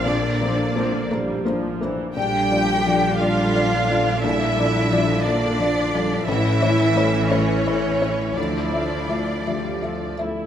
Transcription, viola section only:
X:1
M:6/8
L:1/16
Q:3/8=57
K:Gdor
V:1 name="Viola section" clef=bass
[F,C] [D,B,] [F,C] [D,B,] [F,C] [D,B,] G,2 F,2 E,2 | [D,D]12- | [D,D]12 | [E,^C]12 |
[F,E]6 G,2 F,2 E2 |]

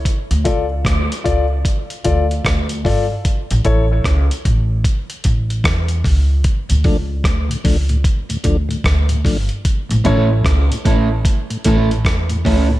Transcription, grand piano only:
X:1
M:4/4
L:1/8
Q:"Swing 16ths" 1/4=75
K:Dm
V:1 name="Grand piano"
z [FAd] z [FAd] z [FAd] z [FAd] | z [EA^c] z6 | z8 | z [EA^c] z6 |]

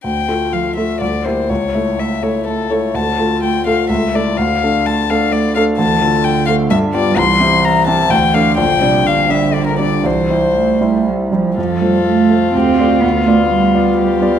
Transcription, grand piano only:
X:1
M:3/4
L:1/8
Q:1/4=126
K:Dm
V:1 name="Grand piano"
D,, [A,FA]2 [A,FA] D,, [B,EG] | ^C,, [A,EA]2 [A,EA]2 [A,EA] | D,, [A,FA]2 [A,FA] ^C,, [A,EA] | D,, [A,DA]2 [A,DA]2 [A,DA] |
[K:Gdor] D,, [A,FA]2 [A,FA] G,, [=B,FG] | C,, [CEG]2 [CEG] D,, [A,Dd] | B,,, [G,Dd]2 [G,Dd]2 [G,Dd] | C,, [G,Ec]2 [G,Ec]2 [G,Ec] |
F,, [A,Fc]2 [A,Fc] D,, [A,Fd] | D,, [=B,Fd]2 [B,Fd]2 [B,Fd] |]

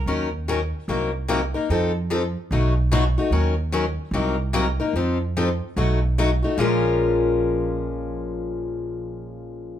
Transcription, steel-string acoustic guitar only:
X:1
M:4/4
L:1/8
Q:"Swing" 1/4=147
K:Bbm
V:1 name="Steel-string acoustic guitar"
[E,G,DEB] z [E,G,DEB] z [C,G,B,EB] z [C,G,B,EB] [B,EB] | [F,CE=A] z [F,CEA] z [=B,,^F,=A,^D^F] z [B,,F,A,DF] [A,DF] | [E,G,DEB] z [E,G,DEB] z [C,G,B,EB] z [C,G,B,EB] [B,EB] | [F,CE=A] z [F,CEA] z [=B,,^F,=A,^D^F] z [B,,F,A,DF] [A,DF] |
[B,,F,A,DFB]8- | [B,,F,A,DFB]8 |]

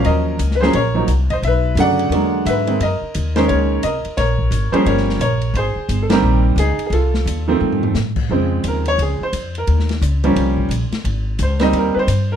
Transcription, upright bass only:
X:1
M:4/4
L:1/8
Q:"Swing" 1/4=175
K:Db
V:1 name="Upright bass" clef=bass
E,,2 D,,2 B,,,2 C,,2 | =B,,,2 ^F,,2 =E,,2 ^G,,2 | G,, z E,,2 D,,2 C,, z | B,,,2 A,,, z =G,,,2 B,,,2 |
A,,, z =G,,,2 B,,,2 D,, z | C,,2 E,,2 F,,2 =A,,2 | F,,2 E,,2 D,, z F,,2 | E,,2 D,,2 C,,2 B,,, z |
A,,,2 D,,2 E,, z =G,,2 |]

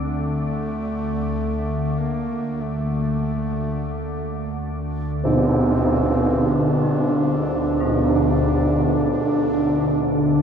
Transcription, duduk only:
X:1
M:4/4
L:1/8
Q:1/4=46
K:Cmix
V:1 name="Duduk"
A,3 B, A,3 z | C2 D2 D2 D2 |]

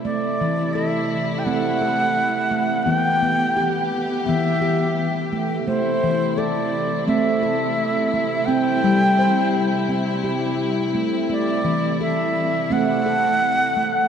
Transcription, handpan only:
X:1
M:4/4
L:1/8
Q:1/4=85
K:Ador
V:1 name="Handpan"
A,2 A2 C A2 A, | B,2 G2 B, G2 A, | A,2 A2 C A2 A, | z2 c2 C G2 A, |
A,2 A2 C A2 A, |]
V:2 name="Handpan" clef=bass
z E,3 A,4 | E, B,3 E,4 | z E,3 A,4 | C G,3 z4 |
z E,3 A,4 |]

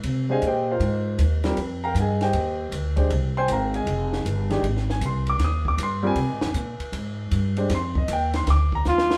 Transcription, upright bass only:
X:1
M:4/4
L:1/8
Q:"Swing" 1/4=157
K:Fdor
V:1 name="Upright bass" clef=bass
C,2 B,,2 A,,2 E,,2 | F,,2 G,,2 E,,2 D,,2 | C,,2 A,,,2 F,,,2 G,,,2 | A,,,2 C,,2 E,,2 G,,2 |
(3C, A,, F,, B,, z A,,2 G,,2 | F,,2 E,,2 D,,2 E,,2 |]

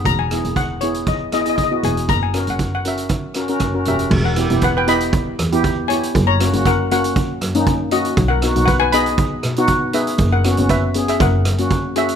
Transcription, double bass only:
X:1
M:4/4
L:1/16
Q:1/4=118
K:Elyd
V:1 name="Double bass" clef=bass
E,,,3 E,,,8- E,,,3 E,,,2 | F,,,3 F,,,8- F,,, F,,,2 E,,,2 | E,,,3 E,,,6- E,,, E,,6 | F,,,3 F,,,6- F,,, F,,6 |
B,,,3 B,,,6- B,,, B,,6 | F,,,3 F,,,4- F,,, F,,,2 F,,6 |]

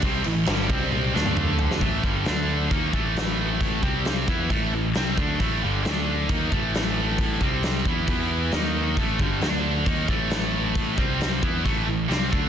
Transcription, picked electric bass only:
X:1
M:4/4
L:1/8
Q:1/4=134
K:D
V:1 name="Picked electric bass" clef=bass
=C,, A,,, G,,, C,,2 D,,3 | A,,, G,,, D,,2 ^D,, A,,,3- | A,,, =C,,2 E,, A,,, A,,, C,, D,, | A,,, G,,, D,,2 ^D,, A,,,3- |
A,,, =C,,2 E,, E,,2 ^D,,2 | A,,, G,,, D,,2 ^D,, A,,,3- | A,,, =C,,2 E,, A,,, A,,, C,, D,, |]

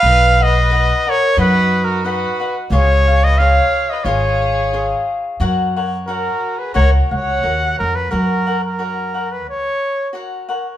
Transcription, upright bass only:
X:1
M:4/4
L:1/8
Q:"Swing" 1/4=89
K:F#
V:1 name="Upright bass" clef=bass
B,,,4 F,,4 | C,,4 G,,,4 | F,,4 C,, C,, D,, E,, | F,,4 C,, z3 |]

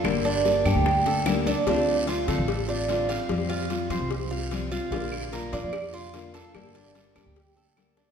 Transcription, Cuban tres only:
X:1
M:4/4
L:1/8
Q:1/4=148
K:Dm
V:1 name="Cuban tres"
A D2 G2 A2 D | D2 F A2 D2 f- | f F2 c2 f2 F | F2 B d2 F2 A- |
A D2 G2 A2 D |]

